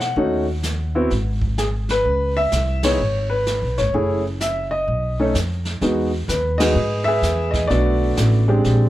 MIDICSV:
0, 0, Header, 1, 4, 480
1, 0, Start_track
1, 0, Key_signature, 4, "minor"
1, 0, Tempo, 471328
1, 169, Time_signature, 4, 2, 24, 8
1, 5928, Key_signature, 4, "major"
1, 9055, End_track
2, 0, Start_track
2, 0, Title_t, "Upright piano"
2, 0, Program_c, 0, 0
2, 0, Note_on_c, 0, 78, 76
2, 170, Note_on_c, 0, 57, 64
2, 173, Note_on_c, 0, 61, 59
2, 175, Note_on_c, 0, 63, 61
2, 175, Note_on_c, 0, 66, 71
2, 453, Note_off_c, 0, 57, 0
2, 454, Note_off_c, 0, 61, 0
2, 455, Note_off_c, 0, 63, 0
2, 455, Note_off_c, 0, 66, 0
2, 969, Note_on_c, 0, 64, 63
2, 970, Note_on_c, 0, 59, 75
2, 973, Note_on_c, 0, 60, 66
2, 977, Note_on_c, 0, 66, 72
2, 1115, Note_off_c, 0, 64, 0
2, 1116, Note_off_c, 0, 59, 0
2, 1117, Note_off_c, 0, 60, 0
2, 1119, Note_off_c, 0, 66, 0
2, 1400, Note_off_c, 0, 78, 0
2, 1612, Note_on_c, 0, 68, 77
2, 1683, Note_off_c, 0, 68, 0
2, 1941, Note_on_c, 0, 71, 105
2, 2410, Note_on_c, 0, 76, 106
2, 2426, Note_off_c, 0, 71, 0
2, 2891, Note_on_c, 0, 63, 58
2, 2892, Note_on_c, 0, 59, 61
2, 2892, Note_on_c, 0, 64, 59
2, 2892, Note_on_c, 0, 68, 63
2, 2897, Note_on_c, 0, 73, 91
2, 2901, Note_off_c, 0, 76, 0
2, 3036, Note_off_c, 0, 59, 0
2, 3036, Note_off_c, 0, 63, 0
2, 3036, Note_off_c, 0, 64, 0
2, 3036, Note_off_c, 0, 68, 0
2, 3357, Note_on_c, 0, 71, 88
2, 3384, Note_off_c, 0, 73, 0
2, 3849, Note_on_c, 0, 73, 77
2, 3855, Note_off_c, 0, 71, 0
2, 4016, Note_on_c, 0, 57, 58
2, 4016, Note_on_c, 0, 61, 50
2, 4017, Note_on_c, 0, 64, 53
2, 4017, Note_on_c, 0, 68, 65
2, 4292, Note_off_c, 0, 73, 0
2, 4295, Note_off_c, 0, 57, 0
2, 4296, Note_off_c, 0, 61, 0
2, 4296, Note_off_c, 0, 64, 0
2, 4296, Note_off_c, 0, 68, 0
2, 4494, Note_on_c, 0, 76, 86
2, 4784, Note_off_c, 0, 76, 0
2, 4796, Note_on_c, 0, 75, 96
2, 5291, Note_on_c, 0, 57, 73
2, 5294, Note_on_c, 0, 61, 70
2, 5294, Note_on_c, 0, 63, 61
2, 5296, Note_on_c, 0, 69, 75
2, 5404, Note_off_c, 0, 75, 0
2, 5436, Note_off_c, 0, 57, 0
2, 5437, Note_off_c, 0, 61, 0
2, 5437, Note_off_c, 0, 63, 0
2, 5438, Note_off_c, 0, 69, 0
2, 5926, Note_on_c, 0, 56, 59
2, 5929, Note_on_c, 0, 59, 51
2, 5930, Note_on_c, 0, 63, 55
2, 5930, Note_on_c, 0, 66, 66
2, 6210, Note_off_c, 0, 56, 0
2, 6212, Note_off_c, 0, 59, 0
2, 6212, Note_off_c, 0, 63, 0
2, 6212, Note_off_c, 0, 66, 0
2, 6403, Note_on_c, 0, 71, 76
2, 6701, Note_on_c, 0, 75, 94
2, 6716, Note_off_c, 0, 71, 0
2, 6718, Note_on_c, 0, 56, 67
2, 6723, Note_on_c, 0, 59, 62
2, 6723, Note_on_c, 0, 63, 61
2, 6723, Note_on_c, 0, 66, 76
2, 6731, Note_on_c, 0, 71, 63
2, 6732, Note_on_c, 0, 68, 67
2, 6869, Note_off_c, 0, 56, 0
2, 6871, Note_off_c, 0, 59, 0
2, 6871, Note_off_c, 0, 63, 0
2, 6872, Note_off_c, 0, 66, 0
2, 7157, Note_off_c, 0, 75, 0
2, 7173, Note_on_c, 0, 76, 117
2, 7190, Note_off_c, 0, 71, 0
2, 7193, Note_off_c, 0, 68, 0
2, 7205, Note_on_c, 0, 71, 72
2, 7208, Note_on_c, 0, 68, 79
2, 7646, Note_on_c, 0, 75, 80
2, 7682, Note_off_c, 0, 76, 0
2, 7808, Note_off_c, 0, 71, 0
2, 7809, Note_off_c, 0, 68, 0
2, 7816, Note_on_c, 0, 74, 92
2, 7835, Note_off_c, 0, 75, 0
2, 7844, Note_on_c, 0, 57, 66
2, 7844, Note_on_c, 0, 59, 59
2, 7846, Note_on_c, 0, 66, 73
2, 7849, Note_on_c, 0, 62, 58
2, 7863, Note_on_c, 0, 69, 67
2, 8577, Note_off_c, 0, 57, 0
2, 8577, Note_off_c, 0, 59, 0
2, 8578, Note_off_c, 0, 66, 0
2, 8579, Note_off_c, 0, 62, 0
2, 8635, Note_on_c, 0, 56, 71
2, 8638, Note_on_c, 0, 60, 61
2, 8644, Note_on_c, 0, 62, 61
2, 8645, Note_on_c, 0, 67, 79
2, 8774, Note_off_c, 0, 69, 0
2, 9055, Note_off_c, 0, 56, 0
2, 9055, Note_off_c, 0, 60, 0
2, 9055, Note_off_c, 0, 62, 0
2, 9055, Note_off_c, 0, 67, 0
2, 9055, Note_off_c, 0, 74, 0
2, 9055, End_track
3, 0, Start_track
3, 0, Title_t, "Upright bass"
3, 0, Program_c, 1, 32
3, 0, Note_on_c, 1, 47, 72
3, 125, Note_off_c, 1, 47, 0
3, 163, Note_on_c, 1, 39, 82
3, 1085, Note_off_c, 1, 39, 0
3, 1125, Note_on_c, 1, 32, 81
3, 2046, Note_off_c, 1, 32, 0
3, 2086, Note_on_c, 1, 37, 77
3, 2534, Note_off_c, 1, 37, 0
3, 2567, Note_on_c, 1, 36, 76
3, 3014, Note_off_c, 1, 36, 0
3, 3056, Note_on_c, 1, 32, 72
3, 3651, Note_off_c, 1, 32, 0
3, 3686, Note_on_c, 1, 35, 59
3, 3836, Note_off_c, 1, 35, 0
3, 3860, Note_on_c, 1, 32, 65
3, 4004, Note_off_c, 1, 32, 0
3, 4009, Note_on_c, 1, 30, 74
3, 4928, Note_off_c, 1, 30, 0
3, 4965, Note_on_c, 1, 35, 72
3, 5413, Note_off_c, 1, 35, 0
3, 5444, Note_on_c, 1, 41, 67
3, 5892, Note_off_c, 1, 41, 0
3, 5921, Note_on_c, 1, 40, 77
3, 6390, Note_off_c, 1, 40, 0
3, 6396, Note_on_c, 1, 39, 85
3, 6867, Note_off_c, 1, 39, 0
3, 6879, Note_on_c, 1, 44, 72
3, 7346, Note_off_c, 1, 44, 0
3, 7352, Note_on_c, 1, 40, 82
3, 7825, Note_off_c, 1, 40, 0
3, 7839, Note_on_c, 1, 35, 82
3, 8308, Note_off_c, 1, 35, 0
3, 8323, Note_on_c, 1, 33, 90
3, 8790, Note_off_c, 1, 33, 0
3, 8802, Note_on_c, 1, 34, 77
3, 9055, Note_off_c, 1, 34, 0
3, 9055, End_track
4, 0, Start_track
4, 0, Title_t, "Drums"
4, 3, Note_on_c, 9, 38, 33
4, 105, Note_off_c, 9, 38, 0
4, 173, Note_on_c, 9, 25, 42
4, 643, Note_on_c, 9, 38, 56
4, 645, Note_on_c, 9, 44, 59
4, 745, Note_off_c, 9, 38, 0
4, 747, Note_off_c, 9, 44, 0
4, 1128, Note_off_c, 9, 25, 0
4, 1128, Note_on_c, 9, 25, 40
4, 1128, Note_on_c, 9, 38, 33
4, 1230, Note_off_c, 9, 38, 0
4, 1442, Note_on_c, 9, 36, 49
4, 1543, Note_off_c, 9, 36, 0
4, 1607, Note_on_c, 9, 38, 54
4, 1609, Note_on_c, 9, 44, 48
4, 1709, Note_off_c, 9, 38, 0
4, 1711, Note_off_c, 9, 44, 0
4, 1922, Note_on_c, 9, 38, 38
4, 2024, Note_off_c, 9, 38, 0
4, 2080, Note_off_c, 9, 25, 0
4, 2080, Note_on_c, 9, 25, 42
4, 2563, Note_on_c, 9, 38, 57
4, 2565, Note_on_c, 9, 44, 53
4, 2665, Note_off_c, 9, 38, 0
4, 2667, Note_off_c, 9, 44, 0
4, 2883, Note_on_c, 9, 38, 80
4, 2886, Note_on_c, 9, 51, 70
4, 2985, Note_off_c, 9, 38, 0
4, 2987, Note_off_c, 9, 51, 0
4, 3052, Note_off_c, 9, 25, 0
4, 3052, Note_on_c, 9, 25, 46
4, 3529, Note_on_c, 9, 38, 58
4, 3531, Note_on_c, 9, 44, 45
4, 3631, Note_off_c, 9, 38, 0
4, 3633, Note_off_c, 9, 44, 0
4, 3845, Note_on_c, 9, 38, 34
4, 3947, Note_off_c, 9, 38, 0
4, 4008, Note_off_c, 9, 25, 0
4, 4008, Note_on_c, 9, 25, 39
4, 4486, Note_on_c, 9, 38, 58
4, 4488, Note_on_c, 9, 44, 55
4, 4587, Note_off_c, 9, 38, 0
4, 4590, Note_off_c, 9, 44, 0
4, 4966, Note_off_c, 9, 25, 0
4, 4966, Note_on_c, 9, 25, 43
4, 5446, Note_on_c, 9, 38, 57
4, 5448, Note_on_c, 9, 44, 52
4, 5548, Note_off_c, 9, 38, 0
4, 5550, Note_off_c, 9, 44, 0
4, 5754, Note_on_c, 9, 38, 38
4, 5856, Note_off_c, 9, 38, 0
4, 5921, Note_off_c, 9, 25, 0
4, 5921, Note_on_c, 9, 25, 49
4, 5921, Note_on_c, 9, 38, 40
4, 6023, Note_off_c, 9, 38, 0
4, 6406, Note_on_c, 9, 38, 59
4, 6408, Note_on_c, 9, 44, 51
4, 6508, Note_off_c, 9, 38, 0
4, 6510, Note_off_c, 9, 44, 0
4, 6722, Note_on_c, 9, 38, 77
4, 6724, Note_on_c, 9, 51, 66
4, 6824, Note_off_c, 9, 38, 0
4, 6826, Note_off_c, 9, 51, 0
4, 6886, Note_off_c, 9, 25, 0
4, 6886, Note_on_c, 9, 25, 50
4, 7363, Note_on_c, 9, 38, 62
4, 7365, Note_on_c, 9, 44, 51
4, 7465, Note_off_c, 9, 38, 0
4, 7467, Note_off_c, 9, 44, 0
4, 7676, Note_on_c, 9, 36, 47
4, 7676, Note_on_c, 9, 38, 38
4, 7778, Note_off_c, 9, 36, 0
4, 7778, Note_off_c, 9, 38, 0
4, 7844, Note_off_c, 9, 25, 0
4, 7844, Note_on_c, 9, 25, 50
4, 7844, Note_on_c, 9, 38, 36
4, 7946, Note_off_c, 9, 38, 0
4, 8321, Note_on_c, 9, 38, 61
4, 8323, Note_on_c, 9, 44, 58
4, 8423, Note_off_c, 9, 38, 0
4, 8425, Note_off_c, 9, 44, 0
4, 8805, Note_off_c, 9, 25, 0
4, 8805, Note_on_c, 9, 25, 44
4, 8805, Note_on_c, 9, 38, 44
4, 8907, Note_off_c, 9, 38, 0
4, 9055, Note_off_c, 9, 25, 0
4, 9055, End_track
0, 0, End_of_file